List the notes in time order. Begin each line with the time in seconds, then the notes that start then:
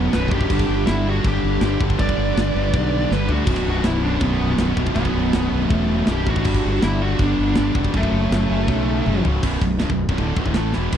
Already playing: B1 F#2 B2 B3
0.03 B1 F#2
0.12 B0 B1 F#2 F#4 B4, snare, china
0.16 B1 B2
0.20 F#2
0.27 B1 F#2 D4 G4
0.31 F#1 F#2 B2, kick
0.35 B1
0.41 B1 F#2, kick
0.50 G1 G2 D3 G3, kick, crash, china
0.57 G2 D3, kick
0.66 G1 G2 D3
0.73 G2 D3
0.82 G2 D3
0.86 G1 G2 D3 B3 E4, snare, china
0.97 G2 D3
1.04 G2 D3 G3 D4
1.10 G2 D3 F#4
1.21 G1 G2 D3, kick, china
1.25 G2 D4 G4
1.30 D3
1.36 G2 D3
1.43 G1 G2 D3
1.51 G2 D3
1.59 G1 G2 D3, snare, china
1.65 G2 D3 G3
1.73 G2 D3
1.80 G1 G2 D3 G3, kick
1.90 G2 D3, kick
1.98 G1 G2 D3 G3 B4 D5, kick, china
2.04 G2 G3
2.08 D3, kick
2.15 G1 G2 D3
2.23 G2 D3
2.31 G2 D3
2.36 G1 G2 D3, snare, china
2.45 G2 D3
2.53 G1 G2 D3 G3
2.61 G2 D3
2.69 G2 D3
2.73 B1 G2, kick, china
2.78 D3
2.85 G2 D3
2.92 G2 D3
3.01 G2 D3
3.08 G1 G2 D3 G4, snare
3.13 G2 D3 G3 B4
3.17 D3
3.25 G2 D3 G3
3.29 D2 G2 D4 F#4, floor tom
3.33 D3
3.39 G2 D3
3.46 B0 B1 F#2 B2, kick, china, crash
3.51 B2
3.55 B1 F#2, kick
3.63 B0 B1 F#2
3.67 B1 F#2 D4 F#4
3.79 B1 F#2
3.84 B0 B1 F#2 B3 E4, snare, china
3.94 B1 F#2
4.01 B1 F#2 B2 B3 D4
4.10 B1 F#2
4.16 B1 F#2
4.20 B0 F#3 B3, kick, china
4.25 B1 F#2
4.33 B1 F#2
4.40 B0 B1 F#2
4.48 B1 F#2
4.56 B0 B1 F#2, snare, china
4.63 B1 F#2 B2
4.71 B1 F#2
4.76 B0 B1 F#2 B2, kick
4.87 B1 F#2, kick
4.95 B0 B1 F#2 B2 F#3 B3, kick, china
5.00 B2
5.04 B1 F#2, kick
5.12 B0 B1 F#2
5.18 B1 F#2
5.27 B1 F#2
5.33 B0 B1 F#2, snare, china
5.43 B1 F#2
5.51 B0 B1 F#2 B2
5.59 B1 F#2
5.66 E1 B1 F#2 A3, china
5.70 F#2 E3, kick
5.75 B1
5.82 B1 F#2
5.89 B1 F#2
5.97 B1 F#2
6.05 B0 B1 F#2 D4, snare, china
6.10 B1 F#2 B2 G4
6.22 B1 F#2
6.26 A1 B1 F#2 B2 D4 F#4, kick
6.36 B1 F#2, kick
6.44 G1 G2 D3 G3, kick, crash, china
6.49 G3
6.53 G2 D3, kick
6.61 G1 G2 D3
6.69 G2 D3
6.76 G2 D3
6.82 G1 G2 D3 E4, snare, china
6.86 B3
6.91 G2 D3
7.00 G2 D3 G3 D4 F#4
7.08 G2 D3
7.14 G2 D3, china
7.19 G1 G2 B3 D4, kick
7.25 D3
7.31 G2 D3
7.38 G1 G2 D3
7.48 G2 D3
7.55 G1 G2 D3, snare, china
7.59 G2 G3
7.64 D3
7.70 G2 D3
7.75 E1 G2 G3, kick
7.79 D3
7.84 G2 D3, kick
7.93 F#1 F#2 C#3 F#3 A3, kick, china
8.00 F#2 C#3, kick
8.10 F#1 F#2 C#3
8.16 F#2 C#3
8.25 F#2 C#3
8.31 F#1 F#2 C#3, snare, china
8.41 F#2 C#3
8.48 F#1 F#2 C#3 F#3
8.56 F#2 C#3
8.65 B1 F#2 C#3, kick, china
8.72 F#2 C#3
8.79 F#2 C#3
8.88 F#2 C#3
8.96 F#2 C#3
9.03 F#2 C#3, high tom
9.07 F#1 F#2 F#3
9.12 C#3
9.18 F#2 C#3
9.23 C#1 F#3, floor tom
9.28 F#2 C#3
9.36 F#2 C#3
9.43 B0 B1 F#2 B2, kick, crash, china
9.61 B0 B1 F#2, kick
9.79 C1 C2 G2, snare, china
9.90 B0 B1 F#2, kick
10.09 B0 B1 F#2, kick
10.18 D1 D2 A2 D3, kick, china
10.37 B0 B1 F#2, kick
10.45 D1 D2 A2, kick
10.54 A1 A2 E3 A3, snare, china
10.73 E1 E2 B2 E3, snare
10.92 B0 B1 F#2, kick, crash